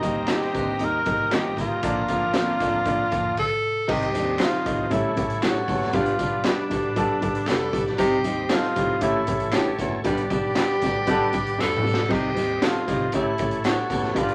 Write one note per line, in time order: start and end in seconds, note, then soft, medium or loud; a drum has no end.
0.00 0.23 D2 loud
0.00 0.19 D#3 medium
0.00 0.19 G3 medium
0.00 0.19 A#3 medium
0.00 1.53 C4 medium
0.00 0.33 D#4 medium
0.00 1.54 D#4 medium
0.00 0.20 D#4 loud
0.00 1.53 G4 medium
0.00 1.53 C5 medium
0.00 1.81 D#5 medium
0.00 1.81 G5 medium
0.00 3.32 A#5 medium
0.00 kick medium
0.00 closed hi-hat medium
0.00 tambourine soft
0.27 0.45 D#3 medium
0.27 0.45 G3 medium
0.27 0.45 A#3 medium
0.27 0.45 D#4 medium
0.27 0.40 D#4 medium
0.27 0.40 G4 medium
0.27 0.40 A#4 medium
0.27 snare loud
0.27 clap medium
0.27 closed hi-hat medium
0.27 tambourine medium
0.32 0.86 G4 medium
0.41 muted upright bass stroke soft
0.41 snare soft
0.53 0.75 D2 medium
0.53 0.74 G2 medium
0.53 0.71 D#3 medium
0.53 0.71 G3 medium
0.53 0.71 A#3 medium
0.53 0.71 C4 medium
0.53 kick medium
0.53 closed hi-hat medium
0.53 tambourine medium
0.79 1.00 D#2 medium
0.79 0.97 D#3 medium
0.79 0.97 G3 medium
0.79 0.97 A#3 medium
0.79 0.97 D#4 medium
0.79 closed hi-hat medium
0.79 tambourine soft
0.84 1.35 A#4 loud
1.06 1.26 A#1 medium
1.06 1.23 D#3 medium
1.06 1.23 G3 medium
1.06 1.23 A#3 medium
1.06 1.23 D#4 medium
1.06 kick loud
1.06 closed hi-hat medium
1.31 1.57 G1 medium
1.31 1.52 F2 medium
1.31 1.48 D#3 medium
1.31 1.48 G3 medium
1.31 1.49 A#3 medium
1.31 1.43 D#4 medium
1.31 1.49 D#4 medium
1.31 1.43 G4 medium
1.31 1.59 G4 loud
1.31 1.43 A#4 medium
1.31 snare loud
1.31 clap medium
1.31 closed hi-hat medium
1.31 tambourine medium
1.56 1.77 A1 medium
1.56 1.77 D#2 medium
1.56 1.74 D#3 medium
1.56 1.74 G3 medium
1.56 1.74 A#3 medium
1.56 1.74 D#4 medium
1.56 kick medium
1.56 closed hi-hat medium
1.56 tambourine medium
1.61 3.35 F4 loud
1.82 2.03 A#1 loud
1.82 2.03 A#2 medium
1.82 2.00 D3 medium
1.82 2.00 F3 medium
1.82 3.09 A#3 medium
1.82 2.00 A#3 medium
1.82 3.09 D4 medium
1.82 2.00 D4 loud
1.82 3.09 F4 medium
1.82 3.09 A#4 medium
1.82 3.36 D5 medium
1.82 3.35 F5 medium
1.82 kick loud
1.82 closed hi-hat medium
1.82 tambourine soft
2.08 2.25 D3 medium
2.08 2.26 F3 medium
2.08 2.26 A#3 medium
2.08 2.26 F4 loud
2.08 kick medium
2.08 closed hi-hat medium
2.08 tambourine medium
2.22 2.52 A#1 medium
2.34 2.51 D3 medium
2.34 2.52 F3 medium
2.34 2.52 A#3 medium
2.34 2.52 C4 loud
2.34 2.46 D4 medium
2.34 2.46 F4 medium
2.34 2.46 A#4 medium
2.34 snare loud
2.34 clap medium
2.34 closed hi-hat medium
2.34 tambourine medium
2.59 2.80 D2 medium
2.59 2.80 F2 medium
2.59 2.77 D3 medium
2.59 2.77 F3 medium
2.59 2.78 A#3 medium
2.59 2.78 D4 loud
2.59 kick medium
2.59 closed hi-hat medium
2.59 tambourine medium
2.85 3.06 A#2 loud
2.85 3.03 D3 medium
2.85 3.03 F3 medium
2.85 3.03 A#3 medium
2.85 3.03 D4 loud
2.85 kick medium
2.85 closed hi-hat medium
3.11 3.32 F2 medium
3.11 3.28 D3 medium
3.11 3.28 F3 medium
3.11 3.28 A#3 medium
3.11 3.29 F4 medium
3.11 kick loud
3.11 closed hi-hat medium
3.11 tambourine soft
3.37 3.92 A4 loud
3.37 kick medium
3.37 crash medium
3.87 4.15 C2 loud
3.87 4.09 C3 medium
3.87 4.05 D#3 loud
3.87 4.05 G3 medium
3.87 4.05 C4 medium
3.87 4.06 D#4 loud
3.87 4.41 G4 loud
3.87 4.90 C5 medium
3.87 4.90 D#5 medium
3.87 kick loud
3.87 crash medium
3.87 tambourine soft
4.01 closed hi-hat soft
4.13 4.35 D#2 medium
4.13 4.31 D#3 medium
4.13 4.31 G3 medium
4.13 4.31 C4 medium
4.13 4.31 D4 medium
4.13 closed hi-hat medium
4.13 tambourine medium
4.39 4.57 D#3 medium
4.39 4.57 G3 medium
4.39 4.57 C4 medium
4.39 4.51 D#4 medium
4.39 4.57 D#4 medium
4.39 4.89 F4 medium
4.39 4.51 G4 medium
4.39 4.52 C5 loud
4.39 snare loud
4.39 clap medium
4.39 closed hi-hat medium
4.39 tambourine medium
4.53 muted upright bass stroke soft
4.53 snare soft
4.65 4.86 C2 medium
4.65 4.86 A2 medium
4.65 4.82 D#3 medium
4.65 4.82 G3 medium
4.65 4.83 C4 medium
4.65 4.83 D#4 medium
4.65 kick medium
4.65 closed hi-hat medium
4.65 tambourine medium
4.90 5.11 A1 loud
4.90 5.08 G3 medium
4.90 5.08 A3 medium
4.90 5.08 C#4 medium
4.90 5.08 E4 loud
4.90 5.45 E4 medium
4.90 5.93 A4 medium
4.90 5.93 C#5 medium
4.90 kick medium
4.90 closed hi-hat medium
5.16 5.57 A1 medium
5.16 5.33 G3 medium
5.16 5.33 A3 medium
5.16 5.34 C#4 medium
5.16 5.34 G4 medium
5.16 kick loud
5.16 closed hi-hat medium
5.30 closed hi-hat soft
5.42 5.63 G2 medium
5.42 5.59 G3 medium
5.42 5.59 A3 medium
5.42 5.60 C#4 medium
5.42 5.54 E4 medium
5.42 5.60 F#4 medium
5.42 5.96 F#4 loud
5.42 5.54 G4 medium
5.42 5.54 C#5 medium
5.42 snare loud
5.42 clap medium
5.42 closed hi-hat medium
5.42 tambourine medium
5.67 5.88 F#1 medium
5.67 5.88 E2 medium
5.67 5.85 G3 medium
5.67 5.85 A3 medium
5.67 5.86 C#4 medium
5.67 5.86 E4 medium
5.67 kick medium
5.67 open hi-hat medium
5.67 tambourine medium
5.82 snare soft
5.93 6.14 G1 loud
5.93 6.14 G2 medium
5.93 6.10 G3 loud
5.93 6.10 B3 medium
5.93 6.11 D4 medium
5.93 6.45 F4 loud
5.93 6.11 G4 loud
5.93 7.97 B4 medium
5.93 7.97 D5 medium
5.93 kick loud
5.93 closed hi-hat medium
5.93 tambourine medium
6.06 closed hi-hat medium
6.19 6.40 B1 medium
6.19 6.36 G3 medium
6.19 6.36 B3 medium
6.19 6.37 D4 medium
6.19 6.37 F4 medium
6.19 kick medium
6.19 closed hi-hat medium
6.19 tambourine medium
6.44 6.62 G3 medium
6.44 6.62 B3 medium
6.44 6.56 D4 medium
6.44 7.49 D4 medium
6.44 6.63 D4 medium
6.44 6.57 G4 medium
6.44 6.63 G4 medium
6.44 6.57 B4 medium
6.44 snare loud
6.44 clap medium
6.44 closed hi-hat medium
6.44 tambourine medium
6.58 muted upright bass stroke soft
6.70 7.11 A1 medium
6.70 6.91 D2 medium
6.70 6.87 G3 medium
6.70 6.87 B3 medium
6.70 6.88 D4 medium
6.70 6.88 G4 medium
6.70 kick medium
6.70 closed hi-hat medium
6.70 tambourine medium
6.96 7.13 G3 loud
6.96 7.13 B3 medium
6.96 7.13 D4 loud
6.96 7.14 A4 loud
6.96 kick loud
6.96 closed hi-hat medium
6.96 tambourine soft
7.21 7.42 G1 medium
7.21 7.38 G3 medium
7.21 7.39 B3 medium
7.21 7.39 D4 medium
7.21 7.39 A4 medium
7.21 kick loud
7.21 closed hi-hat medium
7.35 closed hi-hat medium
7.46 7.69 F1 loud
7.46 7.64 G3 medium
7.46 7.64 B3 medium
7.46 7.59 D4 medium
7.46 7.65 D4 medium
7.46 7.65 G4 medium
7.46 7.59 G4 medium
7.46 7.84 A4 loud
7.46 7.60 B4 medium
7.46 snare medium
7.46 clap medium
7.46 closed hi-hat medium
7.46 tambourine medium
7.73 7.94 B1 medium
7.73 7.90 G3 medium
7.73 7.90 B3 medium
7.73 7.90 D4 medium
7.73 7.91 G4 medium
7.73 kick medium
7.73 closed hi-hat medium
7.73 tambourine medium
7.87 snare soft
7.98 8.25 C2 loud
7.98 8.19 C3 loud
7.98 8.16 G3 loud
7.98 8.16 C4 loud
7.98 8.16 D#4 medium
7.98 8.54 G4 loud
7.98 8.16 G4 loud
7.98 9.01 C5 medium
7.98 9.01 D#5 medium
7.98 kick loud
7.98 closed hi-hat loud
7.98 tambourine medium
8.24 8.45 D#2 medium
8.24 8.41 G3 medium
8.24 8.42 C4 medium
8.24 8.42 D#4 medium
8.24 8.42 G4 medium
8.24 closed hi-hat medium
8.24 tambourine medium
8.50 8.67 G3 medium
8.50 8.67 C4 medium
8.50 8.62 D#4 medium
8.50 8.67 D#4 medium
8.50 9.02 F4 medium
8.50 8.62 G4 medium
8.50 8.68 A4 medium
8.50 8.62 C5 medium
8.50 snare loud
8.50 clap medium
8.50 closed hi-hat medium
8.50 tambourine medium
8.63 muted upright bass stroke soft
8.63 snare soft
8.76 8.96 C2 loud
8.76 8.97 A2 medium
8.76 8.93 G3 medium
8.76 8.93 C4 medium
8.76 8.93 D#4 medium
8.76 8.93 G4 medium
8.76 kick medium
8.76 closed hi-hat medium
8.76 tambourine medium
9.01 9.22 A1 loud
9.01 9.18 A3 loud
9.01 9.18 C#4 medium
9.01 9.19 E4 medium
9.01 9.57 E4 medium
9.01 9.19 G4 loud
9.01 10.04 A4 medium
9.01 10.04 C#5 medium
9.01 kick medium
9.01 closed hi-hat medium
9.27 9.68 A1 loud
9.27 9.44 A3 medium
9.27 9.44 C#4 medium
9.27 9.44 E4 medium
9.27 9.45 G4 medium
9.27 kick loud
9.27 closed hi-hat medium
9.40 closed hi-hat medium
9.52 9.74 G2 medium
9.52 9.69 A3 medium
9.52 9.69 C#4 medium
9.52 9.70 E4 medium
9.52 9.65 E4 medium
9.52 9.70 G4 medium
9.52 9.65 G4 medium
9.52 9.80 G4 medium
9.52 9.66 C#5 medium
9.52 snare loud
9.52 clap medium
9.52 closed hi-hat medium
9.52 tambourine medium
9.79 9.99 F#1 medium
9.79 10.00 E2 medium
9.79 9.96 A3 medium
9.79 9.96 C#4 medium
9.79 9.96 E4 medium
9.79 9.96 F#4 medium
9.79 kick medium
9.79 closed hi-hat medium
9.79 tambourine medium
10.04 10.25 G1 loud
10.04 10.25 G2 medium
10.04 10.21 G3 loud
10.04 10.22 B3 medium
10.04 10.22 D4 medium
10.04 10.22 G4 loud
10.04 11.62 G4 loud
10.04 12.08 B4 medium
10.04 12.08 D5 medium
10.04 kick loud
10.04 closed hi-hat medium
10.04 tambourine soft
10.17 closed hi-hat medium
10.30 10.50 B1 medium
10.30 10.47 G3 medium
10.30 10.47 B3 medium
10.30 10.48 D4 medium
10.30 10.48 G4 medium
10.30 kick medium
10.30 closed hi-hat medium
10.30 tambourine medium
10.55 10.73 G3 medium
10.55 10.73 B3 medium
10.55 10.67 D4 medium
10.55 10.73 D4 medium
10.55 10.68 G4 medium
10.55 10.73 G4 medium
10.55 10.68 B4 medium
10.55 snare loud
10.55 clap medium
10.55 closed hi-hat medium
10.55 tambourine medium
10.70 muted upright bass stroke soft
10.81 11.22 A1 medium
10.81 11.02 D2 medium
10.81 10.99 G3 medium
10.81 10.99 B3 medium
10.81 10.99 D4 medium
10.81 10.99 G4 medium
10.81 kick medium
10.81 closed hi-hat medium
10.81 tambourine medium
11.06 11.24 G3 loud
11.06 11.43 B3 medium
11.06 11.24 B3 loud
11.06 11.44 D4 medium
11.06 11.25 D4 loud
11.06 11.44 G4 loud
11.06 11.25 A4 loud
11.06 11.43 B4 loud
11.06 kick loud
11.06 closed hi-hat medium
11.33 11.54 G1 medium
11.33 11.50 G3 medium
11.33 11.50 B3 medium
11.33 11.50 D4 medium
11.33 11.50 G4 medium
11.33 kick loud
11.33 closed hi-hat medium
11.33 tambourine soft
11.47 closed hi-hat soft
11.58 11.79 F1 loud
11.58 11.75 G3 medium
11.58 11.75 B3 medium
11.58 11.70 D4 medium
11.58 11.76 D4 medium
11.58 11.76 G4 medium
11.58 11.70 G4 medium
11.58 12.14 A4 loud
11.58 11.71 B4 medium
11.58 snare medium
11.58 clap medium
11.58 tambourine medium
11.76 mid tom medium
11.83 12.05 B1 medium
11.83 12.00 G3 medium
11.83 12.01 B3 medium
11.83 12.01 D4 medium
11.83 12.01 G4 medium
11.83 tambourine medium
11.94 snare medium
12.09 12.35 C2 loud
12.09 12.31 C3 medium
12.09 12.26 G3 medium
12.09 12.26 C4 medium
12.09 12.27 D#4 medium
12.09 12.27 G4 loud
12.09 12.66 G4 loud
12.09 13.11 C5 medium
12.09 13.11 D#5 medium
12.09 kick loud
12.09 crash medium
12.09 tambourine medium
12.35 12.56 D#2 medium
12.35 12.52 G3 medium
12.35 12.53 C4 medium
12.35 12.53 D#4 medium
12.35 12.53 G4 medium
12.35 closed hi-hat medium
12.35 tambourine medium
12.61 12.78 G3 medium
12.61 12.78 C4 medium
12.61 12.73 D#4 medium
12.61 12.79 D#4 medium
12.61 13.15 F4 medium
12.61 12.73 G4 medium
12.61 12.79 A4 medium
12.61 12.74 C5 medium
12.61 snare loud
12.61 clap medium
12.61 closed hi-hat medium
12.61 tambourine medium
12.75 muted upright bass stroke soft
12.75 snare soft
12.87 13.08 C2 medium
12.87 13.08 A2 medium
12.87 13.04 G3 medium
12.87 13.04 C4 medium
12.87 13.04 D#4 medium
12.87 13.04 G4 medium
12.87 kick medium
12.87 closed hi-hat medium
12.87 tambourine medium
13.12 13.33 A1 loud
13.12 13.30 A3 medium
13.12 13.30 C#4 medium
13.12 13.31 E4 medium
13.12 13.62 E4 medium
13.12 13.31 G4 loud
13.12 14.16 A4 medium
13.12 14.16 C#5 medium
13.12 kick medium
13.12 closed hi-hat medium
13.12 tambourine soft
13.38 13.79 A1 loud
13.38 13.56 A3 medium
13.38 13.56 C#4 medium
13.38 13.56 E4 medium
13.38 13.56 G4 medium
13.38 kick loud
13.38 closed hi-hat medium
13.38 tambourine soft
13.51 closed hi-hat medium
13.64 13.85 G2 medium
13.64 13.81 A3 medium
13.64 13.81 C#4 medium
13.64 13.76 E4 medium
13.64 13.81 E4 medium
13.64 14.20 F#4 medium
13.64 13.82 G4 medium
13.64 13.76 G4 medium
13.64 13.77 C#5 medium
13.64 snare loud
13.64 clap medium
13.64 closed hi-hat medium
13.64 tambourine medium
13.90 14.10 F#1 medium
13.90 14.11 E2 medium
13.90 14.07 A3 medium
13.90 14.07 C#4 medium
13.90 14.07 E4 medium
13.90 14.07 G4 medium
13.90 kick medium
13.90 closed hi-hat medium
13.90 tambourine medium
14.04 snare soft
14.14 14.35 G1 loud
14.14 14.35 G2 medium
14.14 14.32 G3 medium
14.14 14.32 B3 medium
14.14 14.32 D4 medium
14.14 14.35 F4 medium
14.14 14.33 G4 loud
14.14 14.35 B4 medium
14.14 14.35 D5 medium
14.14 kick loud
14.14 closed hi-hat medium
14.14 tambourine medium
14.29 closed hi-hat medium